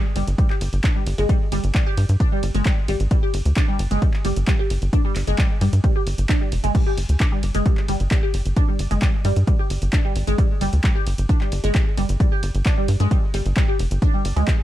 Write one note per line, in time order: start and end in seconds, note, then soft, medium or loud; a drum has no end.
0.16 0.24 G1 medium
0.16 0.19 G3 medium
0.16 open hi-hat loud
0.16 ride medium
0.27 0.35 G1 medium
0.27 closed hi-hat medium
0.38 0.44 G3 medium
0.38 kick loud
0.38 closed hi-hat medium
0.38 ride medium
0.50 0.53 G4 medium
0.50 clap soft
0.61 0.69 G1 medium
0.61 open hi-hat loud
0.61 ride medium
0.73 0.80 G1 medium
0.73 closed hi-hat medium
0.84 0.92 D4 loud
0.84 kick loud
0.84 clap loud
0.84 closed hi-hat medium
0.84 ride medium
0.96 1.03 G3 medium
1.06 1.14 G1 loud
1.06 open hi-hat medium
1.06 ride medium
1.18 1.26 G1 medium
1.18 1.25 G#3 loud
1.18 closed hi-hat medium
1.29 1.34 G3 medium
1.29 kick loud
1.29 closed hi-hat medium
1.29 ride medium
1.52 1.60 G1 medium
1.52 1.55 G3 medium
1.52 open hi-hat loud
1.52 ride medium
1.64 1.71 G1 medium
1.64 closed hi-hat medium
1.75 1.80 G3 medium
1.75 kick loud
1.75 clap loud
1.75 closed hi-hat medium
1.75 ride medium
1.86 1.89 G4 medium
1.97 2.05 G2 loud
1.97 open hi-hat medium
1.97 ride medium
2.09 2.17 G2 medium
2.09 closed hi-hat medium
2.20 2.28 D4 loud
2.20 kick loud
2.20 closed hi-hat medium
2.20 ride medium
2.32 2.39 G3 medium
2.43 2.51 G1 loud
2.43 open hi-hat loud
2.43 ride medium
2.55 2.62 G1 medium
2.55 2.62 G#3 loud
2.55 closed hi-hat medium
2.66 2.71 G3 medium
2.66 kick loud
2.66 clap loud
2.66 closed hi-hat medium
2.66 ride medium
2.88 2.96 G#1 medium
2.88 2.91 G3 medium
2.88 open hi-hat medium
2.88 ride medium
3.00 3.07 G#1 medium
3.00 closed hi-hat medium
3.11 3.16 G3 medium
3.11 kick loud
3.11 closed hi-hat medium
3.11 ride medium
3.23 3.26 G4 medium
3.34 3.42 G1 medium
3.34 open hi-hat loud
3.34 ride medium
3.45 3.53 D2 medium
3.45 closed hi-hat medium
3.56 3.64 D4 loud
3.56 kick loud
3.56 clap loud
3.56 closed hi-hat medium
3.56 ride medium
3.68 3.75 G3 medium
3.79 3.87 G1 loud
3.79 open hi-hat medium
3.79 ride medium
3.91 3.98 G1 medium
3.91 3.98 G#3 loud
3.91 closed hi-hat medium
4.02 4.07 G3 medium
4.02 kick loud
4.02 closed hi-hat medium
4.02 ride medium
4.14 clap soft
4.25 4.33 G1 loud
4.25 4.28 G3 medium
4.25 open hi-hat loud
4.25 ride medium
4.36 4.44 G1 medium
4.36 closed hi-hat medium
4.47 4.53 G3 medium
4.47 kick loud
4.47 clap loud
4.47 closed hi-hat medium
4.47 ride medium
4.59 4.62 G4 medium
4.70 4.78 G1 medium
4.70 open hi-hat medium
4.70 ride medium
4.82 4.89 G1 medium
4.82 closed hi-hat medium
4.93 5.01 D4 loud
4.93 kick loud
4.93 closed hi-hat medium
4.93 ride medium
5.05 5.12 G3 medium
5.16 5.24 G1 medium
5.16 clap soft
5.16 open hi-hat loud
5.16 ride medium
5.27 5.35 G1 medium
5.27 5.35 G#3 loud
5.27 closed hi-hat medium
5.38 5.44 G3 medium
5.38 kick loud
5.38 clap loud
5.38 closed hi-hat medium
5.38 ride medium
5.61 5.69 G2 medium
5.61 5.64 G3 medium
5.61 open hi-hat medium
5.61 ride medium
5.73 5.80 G2 medium
5.73 closed hi-hat medium
5.84 5.89 G3 medium
5.84 kick loud
5.84 closed hi-hat medium
5.84 ride medium
5.96 5.99 G4 medium
6.07 6.14 G1 loud
6.07 open hi-hat loud
6.07 ride medium
6.18 6.26 G1 medium
6.18 closed hi-hat medium
6.29 6.37 D4 loud
6.29 kick loud
6.29 clap loud
6.29 closed hi-hat medium
6.29 ride medium
6.41 6.48 G3 medium
6.52 6.60 F1 medium
6.52 open hi-hat medium
6.52 ride medium
6.64 6.71 G1 medium
6.64 6.71 G#3 loud
6.64 closed hi-hat medium
6.75 6.80 G3 medium
6.75 kick loud
6.75 closed hi-hat medium
6.75 crash medium
6.75 ride medium
6.86 6.89 G4 medium
6.97 7.05 G1 loud
6.97 open hi-hat loud
6.97 ride medium
7.09 7.17 D2 medium
7.09 closed hi-hat medium
7.20 7.28 D4 loud
7.20 kick loud
7.20 clap loud
7.20 closed hi-hat medium
7.20 ride medium
7.32 7.39 G3 medium
7.43 7.51 G1 loud
7.43 open hi-hat loud
7.43 ride medium
7.54 7.62 G1 medium
7.54 7.62 G#3 loud
7.54 closed hi-hat medium
7.66 7.71 G3 medium
7.66 kick loud
7.66 closed hi-hat medium
7.66 ride medium
7.77 clap soft
7.88 7.96 G1 loud
7.88 7.92 G3 medium
7.88 open hi-hat loud
7.88 ride medium
8.00 8.08 G1 medium
8.00 closed hi-hat medium
8.11 8.16 G3 medium
8.11 kick loud
8.11 clap loud
8.11 closed hi-hat medium
8.11 ride medium
8.23 8.26 G4 medium
8.34 8.42 G1 loud
8.34 open hi-hat loud
8.34 ride medium
8.46 8.53 G1 medium
8.46 closed hi-hat medium
8.56 8.64 D4 loud
8.56 kick loud
8.56 closed hi-hat medium
8.56 ride medium
8.68 8.76 G3 medium
8.79 8.87 G1 medium
8.79 open hi-hat loud
8.79 ride medium
8.91 8.98 G1 medium
8.91 8.98 G#3 loud
8.91 closed hi-hat medium
9.02 9.07 G3 medium
9.02 kick loud
9.02 clap loud
9.02 closed hi-hat medium
9.02 ride medium
9.25 9.33 G2 medium
9.25 9.28 G3 medium
9.25 open hi-hat loud
9.25 ride medium
9.36 9.44 G2 medium
9.36 closed hi-hat medium
9.47 9.53 G3 medium
9.47 kick loud
9.47 closed hi-hat medium
9.47 ride medium
9.59 9.62 G4 medium
9.70 9.78 G1 medium
9.70 open hi-hat loud
9.70 ride medium
9.82 9.89 G1 medium
9.82 closed hi-hat medium
9.93 10.01 D4 loud
9.93 kick loud
9.93 clap loud
9.93 closed hi-hat medium
9.93 ride medium
10.05 10.12 G3 medium
10.16 10.24 G#1 medium
10.16 open hi-hat medium
10.16 ride medium
10.27 10.35 G#1 medium
10.27 10.35 G#3 loud
10.27 closed hi-hat medium
10.38 10.43 G3 medium
10.38 kick loud
10.38 closed hi-hat medium
10.38 ride medium
10.61 10.69 G1 medium
10.61 10.64 G3 medium
10.61 open hi-hat loud
10.61 ride medium
10.73 10.80 D2 medium
10.73 closed hi-hat medium
10.84 10.89 G3 medium
10.84 kick loud
10.84 clap loud
10.84 closed hi-hat medium
10.84 ride medium
10.95 10.98 G4 medium
11.07 11.14 G1 loud
11.07 open hi-hat loud
11.07 ride medium
11.18 11.26 G1 medium
11.18 closed hi-hat medium
11.29 11.37 D4 loud
11.29 kick loud
11.29 closed hi-hat medium
11.29 ride medium
11.41 11.48 G3 medium
11.41 clap soft
11.52 11.60 G1 medium
11.52 open hi-hat loud
11.52 ride medium
11.64 11.71 G1 medium
11.64 11.71 G#3 loud
11.64 closed hi-hat medium
11.75 11.80 G3 medium
11.75 kick loud
11.75 clap loud
11.75 closed hi-hat medium
11.75 ride medium
11.97 12.05 G1 loud
11.97 12.01 G3 medium
11.97 open hi-hat loud
11.97 ride medium
12.09 12.17 G1 medium
12.09 closed hi-hat medium
12.20 12.25 G3 medium
12.20 kick loud
12.20 closed hi-hat medium
12.20 ride medium
12.32 12.35 G4 medium
12.43 12.51 G1 medium
12.43 open hi-hat loud
12.43 ride medium
12.55 12.62 G1 medium
12.55 closed hi-hat medium
12.66 12.73 D4 loud
12.66 kick loud
12.66 clap loud
12.66 closed hi-hat medium
12.66 ride medium
12.77 12.85 G3 medium
12.88 12.96 G2 medium
12.88 open hi-hat loud
12.88 ride medium
13.00 13.08 G2 medium
13.00 13.07 G#3 loud
13.00 closed hi-hat medium
13.11 13.16 G3 medium
13.11 kick loud
13.11 closed hi-hat medium
13.11 ride medium
13.34 13.42 G1 medium
13.34 13.37 G3 medium
13.34 open hi-hat loud
13.34 ride medium
13.46 13.53 G1 medium
13.46 closed hi-hat medium
13.57 13.62 G3 medium
13.57 kick loud
13.57 clap loud
13.57 closed hi-hat medium
13.57 ride medium
13.68 13.71 G4 medium
13.79 13.87 F1 loud
13.79 open hi-hat medium
13.79 ride medium
13.91 13.98 G1 medium
13.91 closed hi-hat medium
14.02 14.10 D4 loud
14.02 kick loud
14.02 closed hi-hat medium
14.02 ride medium
14.14 14.21 G3 medium
14.25 14.33 G1 medium
14.25 open hi-hat loud
14.25 ride medium
14.36 14.44 D2 medium
14.36 14.44 G#3 loud
14.36 closed hi-hat medium
14.48 14.53 G3 medium
14.48 kick loud
14.48 clap loud
14.48 closed hi-hat medium
14.48 ride medium